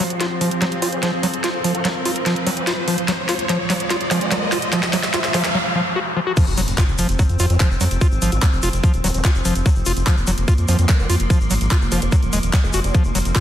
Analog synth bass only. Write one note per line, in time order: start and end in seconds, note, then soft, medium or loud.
6.47 6.54 F1 medium
6.58 6.64 F1 loud
6.68 6.75 F1 medium
6.88 6.95 F1 medium
6.99 7.06 F1 loud
7.09 7.16 F1 loud
7.29 7.36 F2 medium
7.40 7.47 F2 loud
7.50 7.57 F2 medium
7.71 7.77 F1 medium
7.81 7.88 F2 loud
7.91 7.98 F1 medium
8.12 8.19 G#1 medium
8.22 8.29 G#1 loud
8.32 8.39 G#1 medium
8.53 8.60 F1 medium
8.63 8.70 F1 loud
8.73 8.80 F1 medium
8.94 9.01 D#1 medium
9.04 9.11 D#1 loud
9.14 9.21 D#1 loud
9.35 9.42 F1 medium
9.45 9.52 F1 loud
9.55 9.62 F1 medium
9.76 9.83 F1 medium
9.86 9.93 F1 loud
9.97 10.03 F1 loud
10.17 10.24 F1 medium
10.27 10.34 F1 loud
10.38 10.45 F1 medium
10.58 10.65 F2 medium
10.68 10.75 F2 loud
10.79 10.86 F2 loud
10.99 11.06 F1 medium
11.10 11.17 F2 loud
11.20 11.27 F1 loud
11.40 11.47 G#1 loud
11.51 11.58 G#1 loud
11.61 11.68 G#1 medium
11.81 11.88 F1 medium
11.92 11.99 F1 loud
12.02 12.09 F1 medium
12.23 12.30 D#1 medium
12.33 12.40 D#1 loud
12.43 12.50 D#1 medium
12.64 12.71 F1 medium
12.74 12.81 F1 loud
12.84 12.91 F1 medium
13.05 13.12 F1 medium
13.15 13.22 F1 loud
13.25 13.32 F1 medium